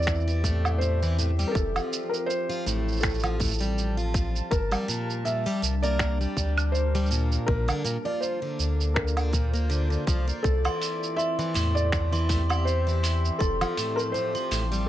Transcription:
Already playing: sub bass E2, twelve-string acoustic guitar E3, ambient pad C4 G4 D5 E5, felt piano D5
0.02 shaker
0.07 finger snap, kick, shaker
0.15 shaker
0.20 shaker
0.28 twelve-string acoustic guitar E3, shaker
0.44 twelve-string acoustic guitar A2, kick, shaker
0.65 low woodblock, shaker
0.78 twelve-string acoustic guitar A2, felt piano C5, shaker
1.02 twelve-string acoustic guitar E3, shaker
1.19 twelve-string acoustic guitar A2, shaker
1.39 twelve-string acoustic guitar G3, shaker
1.47 felt piano A4 A#4
1.55 sub bass F1, ambient pad F3, kick, shaker
1.76 twelve-string acoustic guitar F3, low woodblock, shaker
1.93 shaker
2.09 felt piano A#4
2.14 shaker
2.26 felt piano C5, shaker
2.50 twelve-string acoustic guitar F3, shaker
2.66 sub bass A1, twelve-string acoustic guitar A2, shaker
2.88 ambient pad A5, shaker
2.92 shaker
2.96 shaker
3.00 twelve-string acoustic guitar A2, felt piano A4, finger snap, kick, shaker
3.04 shaker
3.09 shaker
3.14 shaker
3.19 shaker
3.23 twelve-string acoustic guitar F3, low woodblock, shaker
3.40 twelve-string acoustic guitar A2, kick, shaker
3.44 shaker
3.47 shaker
3.51 shaker
3.53 shaker
3.58 twelve-string acoustic guitar G3, shaker
3.62 shaker
3.78 shaker
3.97 twelve-string acoustic guitar F3, shaker
4.14 kick, shaker
4.36 shaker
4.51 sub bass G1, ambient pad G3, felt piano A#4, kick, shaker
4.72 twelve-string acoustic guitar G3, low woodblock, shaker
4.88 twelve-string acoustic guitar A#2, shaker
5.10 shaker
5.20 ambient pad D4
5.25 twelve-string acoustic guitar A#2, felt piano E5, shaker
5.46 twelve-string acoustic guitar G3, shaker
5.62 sub bass C2, twelve-string acoustic guitar A#2, shaker
5.83 twelve-string acoustic guitar A#3, felt piano D5, shaker
5.87 ambient pad A#4
5.99 finger snap, kick, shaker
6.21 twelve-string acoustic guitar G3, shaker
6.37 sub bass D2, kick, shaker
6.58 low woodblock, shaker
6.72 felt piano C5, shaker
6.95 twelve-string acoustic guitar G3, shaker
7.06 shaker
7.11 twelve-string acoustic guitar A#2, shaker
7.32 shaker
7.46 sub bass A#1, twelve-string acoustic guitar A#2, ambient pad A#3, felt piano A#4, kick
7.68 twelve-string acoustic guitar D3, low woodblock, shaker
7.85 twelve-string acoustic guitar A#2, shaker
8.05 twelve-string acoustic guitar F3, felt piano D5
8.21 felt piano C5, shaker
8.30 ambient pad F4
8.42 twelve-string acoustic guitar D3
8.58 sub bass D2, ambient pad C5, shaker
8.80 ambient pad D5, shaker
8.94 felt piano A#4, finger snap, kick
9.07 shaker
9.17 twelve-string acoustic guitar D3, low woodblock, shaker
9.33 twelve-string acoustic guitar A#2, kick, shaker
9.54 twelve-string acoustic guitar A#3, shaker
9.70 twelve-string acoustic guitar D3, shaker
9.90 twelve-string acoustic guitar D3, shaker
10.07 sub bass C2, twelve-string acoustic guitar F3, kick, shaker
10.28 twelve-string acoustic guitar A#3, shaker
10.43 sub bass C2, ambient pad C4, felt piano A4, kick, shaker
10.65 twelve-string acoustic guitar E3, glockenspiel C6, low woodblock, shaker
10.78 ambient pad G4, open hi-hat
10.82 shaker
11.03 shaker
11.16 felt piano E5, glockenspiel C6, shaker
11.39 twelve-string acoustic guitar E3, ambient pad E5, shaker
11.54 sub bass E2, twelve-string acoustic guitar A2, glockenspiel C6, open hi-hat, shaker
11.75 felt piano D5, shaker
11.92 twelve-string acoustic guitar A2, finger snap, kick, shaker
12.13 twelve-string acoustic guitar E3, glockenspiel C6, shaker
12.29 twelve-string acoustic guitar A2, kick, open hi-hat, shaker
12.49 twelve-string acoustic guitar G3, glockenspiel C6, low woodblock, shaker
12.65 felt piano C5, shaker
12.87 twelve-string acoustic guitar E3, shaker
13.03 glockenspiel C6, open hi-hat, shaker
13.25 shaker
13.39 sub bass F1, ambient pad F3, felt piano A4, glockenspiel C6, kick, shaker
13.61 twelve-string acoustic guitar F3, low woodblock, shaker
13.77 twelve-string acoustic guitar A2, open hi-hat, shaker
13.96 felt piano A#4, glockenspiel C6, shaker
14.12 twelve-string acoustic guitar A2, felt piano C5, shaker
14.35 twelve-string acoustic guitar F3, glockenspiel C6, shaker
14.51 sub bass A1, twelve-string acoustic guitar A2, open hi-hat, shaker
14.72 twelve-string acoustic guitar G3, ambient pad A5, shaker

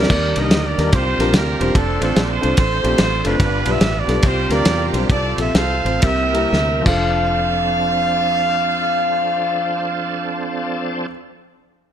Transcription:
Already playing: horn section G4 A#4 D5
0.02 grand piano G3 A#3 C4 E4 A4, snare
0.10 fingered electric bass D#2, grand piano D#3, tonewheel organ G3 A#3 D4 D#4 A#4, kick, crash
0.36 fingered electric bass C2, grand piano G3 A#3 D4 D#4 A#4, horn section D#5, ride
0.51 fingered electric bass D2, snare, ride
0.65 horn section D5
0.78 fingered electric bass D#2, grand piano G3 A#3 D4 D#4 A#4, snare, ride
0.91 fingered electric bass C2, grand piano C3, tonewheel organ G3 C4 D4 F4 A#4, horn section F4 G4 C5, kick, ride
1.19 fingered electric bass A#1, grand piano G3 C4 D4 F4 A#4, snare, ride
1.33 fingered electric bass D2, horn section D4 F4 A#4, snare, ride
1.59 fingered electric bass E1, grand piano G3 C4 D4 F4 C5, ride
1.75 fingered electric bass F1, tonewheel organ A3 C4 D4 F4 C5, horn section C4 D4 A4, kick, ride
2.01 fingered electric bass A1, grand piano A3 C4 D4 F4 C5, horn section A4, ride
2.16 fingered electric bass A#1, snare, ride
2.29 horn section C5
2.41 fingered electric bass C2, grand piano A3 C4 D4 F4 C5, ride
2.57 fingered electric bass A1, horn section A4 C5, kick, ride
2.83 fingered electric bass A#1, grand piano A3 C4 D4 F4 G4, ride
2.98 fingered electric bass A1, snare, ride
3.24 fingered electric bass F#1, grand piano A3 C4 D4 F4 C5, horn section D4 F4 B4, ride
3.40 fingered electric bass G1, grand piano G2, tonewheel organ G3 B3 D4 F4 A4, kick, ride
3.45 tonewheel organ B4
3.65 fingered electric bass B1, grand piano G3 B3 D4 F4 B4, horn section E5, ride
3.81 fingered electric bass A1, snare, ride
3.96 horn section D5
4.07 fingered electric bass B1, grand piano G3 B3 D4 F4 A4, snare, ride
4.22 fingered electric bass C2, grand piano C3, tonewheel organ G3 C4 D4 F4 A#4, horn section F4 G4 C5, kick, ride
4.49 fingered electric bass D2, grand piano G3 C4 D4 F4 A#4, horn section F4 A#4 D5, snare, ride
4.65 fingered electric bass E2, snare, ride
4.93 fingered electric bass B1, grand piano G3 C4 D4 F4 C5, ride
5.09 fingered electric bass C2, grand piano C3, tonewheel organ C4 F4 A4, horn section F4 A4 D5, kick, ride
5.37 fingered electric bass A#1, grand piano C4 F4 A4, horn section E5, ride
5.54 fingered electric bass C2, horn section A4 C5 F5, snare, ride
5.84 fingered electric bass A1, grand piano C4 F4 C5, ride
6.01 fingered electric bass C2, grand piano C3, tonewheel organ G3 A#3 C4 E4 A#4, horn section G4 A#4 E5, kick, ride
6.33 grand piano G3 A#3 C4 E4 A#4, ride
6.52 fingered electric bass D2, snare
6.81 grand piano F2 F3 C4, tonewheel organ C4 A4, horn section F5
6.86 fingered electric bass F1, tonewheel organ F3 D4, grand piano D4 A4, kick, crash

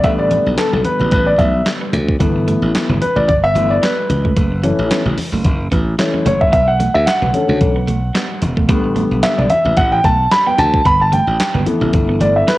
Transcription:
0.03 slap bass A1, grand piano D3 G3 B3 E5, clean electric guitar A3, kick, closed hi-hat
0.19 grand piano D5, muted clean electric guitar stroke
0.31 clean electric guitar A3, closed hi-hat, muted conga, high conga
0.46 slap bass B1
0.58 clean electric guitar B3, grand piano A4, snare, clap, closed hi-hat
0.73 slap bass B1, grand piano A4, low conga
0.85 grand piano B4, muted clean electric guitar stroke, closed hi-hat, high conga
1.00 slap bass A1, clean electric guitar B3, low conga
1.11 slap bass A1, grand piano B4, kick, closed hi-hat, high conga
1.27 grand piano D5
1.39 slap bass B1, clean electric guitar A3, grand piano E5, kick, closed hi-hat, muted conga, high conga
1.66 muted clean electric guitar stroke, snare, clap, closed hi-hat
1.81 clean electric guitar B3
1.93 slap bass D2, clean electric guitar D4, closed hi-hat, muted conga, high conga, low conga
2.09 kick
2.19 slap bass G1, grand piano E3 A3 B3, clean electric guitar B3, kick, closed hi-hat, muted conga
2.36 muted clean electric guitar stroke
2.48 clean electric guitar A3, closed hi-hat, muted conga, high conga
2.62 slap bass A1
2.75 snare, clap, closed hi-hat
2.89 slap bass G1, clean electric guitar B3, low conga
3.01 grand piano B4, muted clean electric guitar stroke, closed hi-hat, high conga
3.16 slap bass A1, clean electric guitar A3, grand piano D5, low conga
3.28 slap bass G1, grand piano D5, muted clean electric guitar stroke, kick, closed hi-hat, muted conga, high conga
3.44 clean electric guitar B3, grand piano E5
3.55 slap bass G1, grand piano E3 A3 B3, clean electric guitar A3, closed hi-hat, muted conga, high conga
3.70 grand piano D5
3.82 clean electric guitar B3, grand piano B4, snare, clap, closed hi-hat
4.09 slap bass C#2, muted clean electric guitar stroke, closed hi-hat, muted conga, high conga, low conga
4.25 clean electric guitar A3, kick
4.36 slap bass F#1, clean electric guitar A3, kick, closed hi-hat, muted conga
4.52 muted clean electric guitar stroke
4.63 grand piano E3 A3 C#4, clean electric guitar C#4, closed hi-hat, muted conga, high conga
4.79 slap bass A1
4.90 clean electric guitar B3, snare, clap, closed hi-hat, muted conga
5.05 slap bass A1, low conga
5.17 muted clean electric guitar stroke, open hi-hat, muted conga, high conga
5.32 slap bass F#1, clean electric guitar A3, low conga
5.44 slap bass F#1, kick, closed hi-hat, muted conga, high conga
5.71 slap bass A1, clean electric guitar B3, kick, closed hi-hat, muted conga, high conga
5.98 grand piano E3 A3 C#4, muted clean electric guitar stroke, snare, clap, closed hi-hat, muted conga
6.14 clean electric guitar C#4, high conga
6.26 slap bass F#1, clean electric guitar A3, grand piano C#5, closed hi-hat, muted conga, high conga, low conga
6.41 grand piano E5, kick
6.52 slap bass B1, clean electric guitar B3, grand piano E5, kick, closed hi-hat, muted conga
6.68 grand piano F#5, muted clean electric guitar stroke
6.80 clean electric guitar A3, closed hi-hat, high conga
6.94 slap bass D2, grand piano E5
7.06 grand piano F#5, snare, clap, closed hi-hat, muted conga
7.22 slap bass B1, clean electric guitar B3, low conga
7.33 grand piano D3 A3 C#4, muted clean electric guitar stroke, closed hi-hat, muted conga, high conga
7.49 slap bass D2, clean electric guitar A3, low conga
7.61 slap bass B1, muted clean electric guitar stroke, kick, closed hi-hat, muted conga, high conga
7.76 clean electric guitar B3
7.87 slap bass B1, clean electric guitar A3, closed hi-hat, high conga
8.15 clean electric guitar B3, snare, clap, closed hi-hat
8.42 slap bass E1, muted clean electric guitar stroke, closed hi-hat, muted conga, high conga, low conga
8.57 clean electric guitar A3, kick
8.69 slap bass A1, grand piano D3 G3 B3, clean electric guitar A3, kick, closed hi-hat, muted conga
8.84 muted clean electric guitar stroke
8.96 clean electric guitar A3, closed hi-hat, high conga
9.11 slap bass B1
9.23 clean electric guitar B3, grand piano E5, snare, clap, closed hi-hat
9.38 slap bass B1, grand piano D5, low conga
9.50 grand piano E5, muted clean electric guitar stroke, closed hi-hat, muted conga, high conga
9.65 slap bass A1, clean electric guitar B3, low conga
9.77 slap bass A1, grand piano F#5, kick, closed hi-hat, high conga
9.92 grand piano G5
10.04 slap bass B1, clean electric guitar A3, grand piano A5, kick, closed hi-hat, muted conga, high conga
10.31 grand piano B5, muted clean electric guitar stroke, snare, clap, closed hi-hat
10.47 clean electric guitar B3, grand piano G5
10.58 slap bass D2, clean electric guitar D4, grand piano A5, closed hi-hat, high conga, low conga
10.74 kick
10.85 slap bass G1, clean electric guitar B3, grand piano B5, kick, closed hi-hat, muted conga
11.00 grand piano A5, muted clean electric guitar stroke
11.12 clean electric guitar A3, grand piano G5, closed hi-hat, muted conga, high conga
11.27 slap bass A1
11.40 snare, clap, closed hi-hat
11.54 slap bass G1, clean electric guitar B3, low conga
11.66 grand piano E3 A3 B3, muted clean electric guitar stroke, closed hi-hat, muted conga, high conga
11.81 slap bass A1, clean electric guitar A3, low conga
11.93 slap bass G1, muted clean electric guitar stroke, kick, closed hi-hat, muted conga, high conga
12.09 clean electric guitar B3
12.20 slap bass G1, clean electric guitar A3, grand piano D5, closed hi-hat, muted conga, high conga
12.36 grand piano E5
12.47 clean electric guitar B3, grand piano B4, snare, clap, closed hi-hat, muted conga

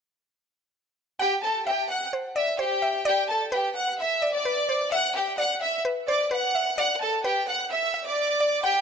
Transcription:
1.19 violin section G4 G5, synth pluck F#5
1.43 violin section A4 A5
1.66 violin section G4 G5, synth pluck E5
1.89 violin section F#5 F#6
2.13 synth pluck C5
2.36 synth pluck D5, violin section E5 E6
2.59 violin section G4 G5, synth pluck C5
2.82 synth pluck E5
3.05 violin section G4 G5, synth pluck D5
3.29 violin section A4 A5
3.52 violin section G4 G5, synth pluck B4
3.75 violin section F#5 F#6
3.98 violin section E5 E6
4.22 synth pluck D5
4.33 violin section D5 D6
4.45 synth pluck B4
4.69 synth pluck C5
4.92 synth pluck E5, violin section F#5 F#6
5.15 violin section G4 G5
5.38 synth pluck D5, violin section F#5 F#6
5.62 violin section E5 E6
5.85 synth pluck B4
6.08 synth pluck C5, violin section D5 D6
6.31 synth pluck B4, violin section F#5 F#6
6.55 synth pluck E5
6.78 synth pluck D5, violin section F#5 F#6
7.01 violin section A4 A5
7.24 violin section G4 G5, synth pluck B4
7.48 violin section F#5 F#6
7.71 violin section E5 E6
7.94 synth pluck E5
8.06 violin section D5 D6
8.40 synth pluck D5
8.64 violin section G4 G5, synth pluck F#5

